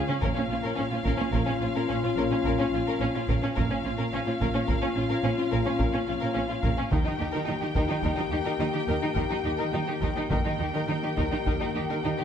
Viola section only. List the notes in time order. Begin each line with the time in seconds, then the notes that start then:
0.10 C#4
0.23 C#4
0.38 C#4
0.51 C#4
0.65 C#4
0.79 C#4
0.93 C#4
1.06 C#4
1.21 C#4
1.34 C#4
1.48 C#4
1.61 C#4
1.75 C#4
1.89 C#4
2.04 C#4
2.17 C#4
2.32 C#4
2.46 C#4
2.60 C#4
2.73 C#4
2.88 C#4
3.01 C#4
3.15 C#4
3.29 C#4
3.42 C#4
3.56 C#4
3.70 C#4
3.85 C#4
3.98 C#4
4.13 C#4
4.27 C#4
4.40 C#4
4.55 C#4
4.68 C#4
4.82 C#4
4.96 C#4
5.10 C#4
5.24 C#4
5.38 C#4
5.52 C#4
5.65 C#4
5.79 C#4
5.93 C#4
6.08 C#4
6.22 C#4
6.36 C#4
6.50 C#4
6.64 C#4
6.78 C#4
6.92 D#4
7.07 D#4
7.20 D#4
7.34 D#4
7.47 D#4
7.62 D#4
7.76 D#4
7.90 D#4
8.04 D#4
8.18 D#4
8.32 D#4
8.45 D#4
8.60 D#4
8.75 D#4
8.89 D#4
9.03 D#4
9.16 D#4
9.31 D#4
9.45 D#4
9.59 D#4
9.73 D#4
9.87 D#4
10.02 D#4
10.16 D#4
10.31 D#4
10.45 D#4
10.59 D#4
10.74 D#4
10.90 D#4
11.03 D#4
11.16 D#4
11.31 D#4
11.46 D#4
11.60 D#4
11.74 D#4
11.89 D#4
12.04 D#4
12.18 D#4